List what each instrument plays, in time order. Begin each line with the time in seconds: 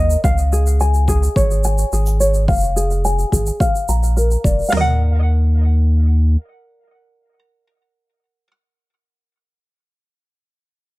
Already playing: sub bass D#2, ukulele A#4 D#5 F#5
0.10 shaker
0.24 sub bass C#2, ukulele F5, kick, shaker
0.38 shaker
0.52 ukulele G#4, shaker
0.67 shaker
0.80 ukulele G#5, shaker
0.94 shaker
1.08 ukulele G#4, kick, shaker
1.23 shaker
1.36 sub bass G#1, ukulele C#5, kick, shaker
1.51 shaker
1.64 ukulele G#5, shaker
1.78 shaker
1.92 sub bass G#1, ukulele G#4, shaker
2.06 shaker
2.20 ukulele C#5, shaker
2.34 shaker
2.48 sub bass F1, ukulele F5, kick, shaker
2.51 shaker
2.53 shaker
2.56 shaker
2.58 shaker
2.60 shaker
2.64 shaker
2.76 ukulele G#4, shaker
2.91 shaker
3.05 ukulele G#5, shaker
3.19 shaker
3.32 sub bass G#1, ukulele G#4, kick, shaker
3.46 shaker
3.60 ukulele F5, kick, shaker
3.75 shaker
3.88 sub bass A#1, ukulele A#5, shaker
4.03 shaker
4.17 ukulele A#4, shaker
4.31 shaker
4.44 sub bass F1, ukulele D5, kick, shaker
4.59 shaker
4.61 shaker
4.64 shaker
4.66 shaker
4.68 ukulele F5, shaker
4.71 sub bass D#2, ukulele A#4, snare, floor tom, open hi-hat, shaker
4.77 ukulele D#5 F#5